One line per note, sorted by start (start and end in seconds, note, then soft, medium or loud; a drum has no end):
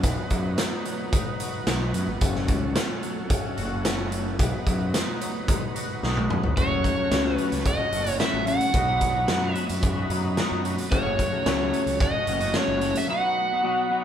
0.00 0.16 B1 medium
0.00 1.40 B2 medium
0.00 0.85 F#3 medium
0.00 1.40 F#4 medium
0.00 kick medium
0.00 closed hi-hat medium
0.04 2.20 D#4 medium
0.04 2.20 B4 medium
0.04 4.36 F#5 medium
0.30 0.56 F#2 medium
0.30 kick medium
0.30 closed hi-hat medium
0.58 1.11 D#4 medium
0.58 snare medium
0.58 closed hi-hat medium
0.85 3.03 F#3 medium
0.85 closed hi-hat medium
1.12 1.66 D#4 medium
1.12 kick loud
1.12 closed hi-hat medium
1.40 3.57 F#4 medium
1.40 closed hi-hat medium
1.67 1.92 B1 medium
1.67 2.22 D#4 medium
1.67 snare loud
1.67 closed hi-hat medium
1.94 2.06 F#2 medium
1.94 2.21 B3 medium
1.94 closed hi-hat medium
2.07 2.20 G#1 medium
2.21 2.46 F#1 medium
2.21 3.57 F#2 medium
2.21 4.37 C#4 medium
2.21 4.37 A4 medium
2.21 kick loud
2.21 closed hi-hat medium
2.35 snare soft
2.48 2.73 C#2 medium
2.48 kick medium
2.48 closed hi-hat soft
2.75 3.29 C#4 medium
2.75 snare loud
2.75 closed hi-hat medium
3.03 5.20 F#3 medium
3.03 closed hi-hat soft
3.30 3.84 C#4 medium
3.30 kick medium
3.30 closed hi-hat medium
3.57 4.35 F#1 medium
3.57 5.75 F#4 medium
3.57 closed hi-hat medium
3.85 4.39 C#4 medium
3.85 snare loud
3.85 closed hi-hat medium
4.12 4.39 A3 medium
4.12 closed hi-hat medium
4.39 4.51 B1 medium
4.39 5.75 B2 medium
4.39 6.55 D#4 medium
4.39 6.55 B4 medium
4.39 6.55 F#5 medium
4.39 kick medium
4.39 closed hi-hat medium
4.67 4.91 F#2 medium
4.67 kick medium
4.67 closed hi-hat medium
4.94 5.47 D#4 medium
4.94 snare loud
4.94 closed hi-hat medium
5.21 6.56 F#3 medium
5.21 closed hi-hat medium
5.48 6.02 D#4 medium
5.48 kick loud
5.48 closed hi-hat medium
5.75 6.57 F#4 medium
5.75 closed hi-hat medium
6.03 6.27 B1 medium
6.03 6.57 D#4 medium
6.03 snare medium
6.17 high tom medium
6.30 6.42 F#2 medium
6.30 6.57 B3 medium
6.30 mid tom medium
6.43 6.56 G#1 medium
6.43 floor tom medium
6.57 6.82 F#1 medium
6.57 7.10 F#2 medium
6.57 7.10 C#3 medium
6.57 6.99 F#3 medium
6.57 6.98 A3 medium
6.57 6.97 C#4 medium
6.57 14.04 F#4 medium
6.57 6.97 F#4 medium
6.57 8.73 C#5 medium
6.57 7.35 C#5 medium
6.57 8.73 A5 medium
6.57 kick medium
6.57 closed hi-hat soft
6.84 kick medium
6.84 closed hi-hat medium
6.97 7.11 F#3 soft
6.97 7.11 A3 medium
6.97 7.11 C#4 medium
6.97 7.13 F#4 medium
7.11 7.36 C#2 medium
7.11 7.65 F#2 medium
7.11 7.66 C#3 medium
7.11 7.37 F#3 medium
7.11 7.37 A3 medium
7.11 7.38 C#4 medium
7.11 7.40 F#4 medium
7.11 snare loud
7.11 closed hi-hat medium
7.35 7.52 F#3 medium
7.35 7.51 A3 medium
7.35 7.66 B4 medium
7.35 closed hi-hat soft
7.39 7.51 C#4 medium
7.39 7.52 F#4 medium
7.52 7.77 C#2 medium
7.52 muted clean electric guitar stroke soft
7.52 snare soft
7.52 closed hi-hat medium
7.65 8.20 D#5 medium
7.65 kick medium
7.65 closed hi-hat medium
7.78 7.91 F#3 soft
7.78 7.92 A3 medium
7.78 7.92 C#4 medium
7.78 7.93 F#4 medium
7.92 8.17 F#1 medium
7.92 8.07 F#3 medium
7.92 8.06 A3 medium
7.92 8.05 C#4 medium
7.92 8.05 F#4 medium
7.92 closed hi-hat medium
8.05 8.19 F#3 medium
8.05 8.19 A3 medium
8.05 8.19 C#4 medium
8.05 8.21 F#4 medium
8.05 closed hi-hat medium
8.19 8.72 F#2 medium
8.19 8.72 C#3 medium
8.19 8.46 F#3 medium
8.19 8.46 A3 medium
8.19 8.47 C#4 medium
8.19 8.48 F#4 medium
8.19 8.48 E5 medium
8.19 snare loud
8.19 closed hi-hat soft
8.34 8.58 A1 medium
8.46 8.61 F#3 medium
8.46 8.60 A3 medium
8.46 8.59 C#4 medium
8.46 8.60 F#4 medium
8.46 9.53 F#5 medium
8.46 closed hi-hat medium
8.60 muted clean electric guitar stroke soft
8.60 closed hi-hat medium
8.73 9.25 B1 medium
8.73 9.26 B2 medium
8.73 9.28 F#3 medium
8.73 9.15 B3 medium
8.73 9.15 D#4 medium
8.73 9.14 F#4 medium
8.73 10.89 D#5 medium
8.73 10.89 B5 medium
8.73 kick medium
8.73 closed hi-hat medium
9.01 kick medium
9.01 closed hi-hat medium
9.15 9.27 B3 soft
9.15 9.28 D#4 medium
9.15 9.29 F#4 medium
9.28 9.53 F#2 medium
9.28 9.83 B2 medium
9.28 9.55 F#3 medium
9.28 9.55 B3 medium
9.28 9.55 D#4 medium
9.28 9.57 F#4 medium
9.28 snare loud
9.28 closed hi-hat medium
9.53 9.69 F#3 medium
9.53 9.69 B3 medium
9.53 9.68 D#4 medium
9.53 9.69 F#4 medium
9.53 10.07 E5 medium
9.53 closed hi-hat medium
9.69 10.07 F#2 medium
9.69 muted clean electric guitar stroke soft
9.69 closed hi-hat medium
9.83 kick loud
9.83 closed hi-hat medium
9.96 10.09 B3 soft
9.96 10.10 D#4 medium
9.96 10.11 F#4 medium
10.09 10.35 F#2 medium
10.09 10.37 F#3 medium
10.09 10.24 B3 medium
10.09 10.23 D#4 medium
10.09 10.23 F#4 medium
10.09 closed hi-hat medium
10.23 10.37 B3 soft
10.23 10.37 D#4 medium
10.23 10.38 F#4 medium
10.37 10.90 B2 medium
10.37 10.63 F#3 medium
10.37 10.63 B3 medium
10.37 10.64 D#4 medium
10.37 10.65 F#4 medium
10.37 snare medium
10.37 closed hi-hat soft
10.51 10.76 F#2 medium
10.64 10.78 F#3 medium
10.64 10.77 B3 medium
10.64 10.77 D#4 medium
10.64 10.77 F#4 medium
10.64 closed hi-hat medium
10.78 muted clean electric guitar stroke soft
10.78 closed hi-hat medium
10.91 11.17 F#1 medium
10.91 11.44 F#2 medium
10.91 11.45 C#3 medium
10.91 11.33 F#3 medium
10.91 11.32 A3 medium
10.91 11.31 C#4 medium
10.91 11.31 F#4 medium
10.91 12.01 C#5 medium
10.91 13.07 C#5 medium
10.91 13.07 A5 medium
10.91 kick medium
10.91 closed hi-hat medium
11.19 kick medium
11.19 closed hi-hat medium
11.32 11.46 F#3 medium
11.32 11.45 A3 medium
11.32 11.46 C#4 medium
11.32 11.47 F#4 medium
11.45 11.71 C#2 medium
11.45 12.00 F#2 medium
11.45 12.00 C#3 medium
11.45 11.71 F#3 medium
11.45 11.72 A3 medium
11.45 11.72 C#4 medium
11.45 11.74 F#4 medium
11.45 snare loud
11.45 closed hi-hat soft
11.72 11.87 F#3 medium
11.72 11.86 A3 medium
11.72 11.85 C#4 medium
11.72 11.86 F#4 medium
11.72 closed hi-hat soft
11.86 12.11 C#2 medium
11.86 muted clean electric guitar stroke soft
11.86 closed hi-hat medium
12.00 12.57 D#5 medium
12.00 kick loud
12.00 closed hi-hat medium
12.13 12.26 F#3 medium
12.13 12.26 A3 medium
12.13 12.27 C#4 medium
12.13 12.28 F#4 medium
12.26 12.52 F#1 medium
12.26 12.42 F#3 medium
12.26 12.41 A3 medium
12.26 12.40 C#4 medium
12.26 12.40 F#4 medium
12.26 closed hi-hat medium
12.40 12.54 F#3 medium
12.40 12.54 A3 medium
12.40 12.55 C#4 medium
12.40 12.55 F#4 medium
12.40 closed hi-hat soft
12.54 13.07 F#2 medium
12.54 13.07 C#3 medium
12.54 12.81 F#3 medium
12.54 12.81 A3 medium
12.54 12.81 C#4 medium
12.54 12.83 F#4 loud
12.54 12.97 C#5 medium
12.54 snare loud
12.54 closed hi-hat medium
12.68 12.93 F#1 medium
12.81 12.95 F#3 medium
12.81 12.94 A3 medium
12.81 12.94 C#4 medium
12.81 12.94 F#4 medium
12.81 closed hi-hat medium
12.95 13.10 E5 medium
12.95 muted clean electric guitar stroke soft
12.95 closed hi-hat medium
13.08 13.62 B2 medium
13.08 13.62 F#3 medium
13.08 13.50 B3 medium
13.08 13.49 D#4 medium
13.08 13.48 F#4 medium
13.08 14.04 D#5 medium
13.08 14.04 F#5 medium
13.08 14.04 B5 medium
13.49 13.63 B3 soft
13.49 13.63 D#4 medium
13.49 13.64 F#4 medium
13.63 14.04 B2 medium
13.63 13.89 F#3 medium
13.63 13.89 B3 medium
13.63 13.90 D#4 medium
13.63 13.90 F#4 medium
13.90 14.04 F#3 medium
13.90 14.03 B3 medium
13.90 14.03 D#4 medium
13.90 14.03 F#4 medium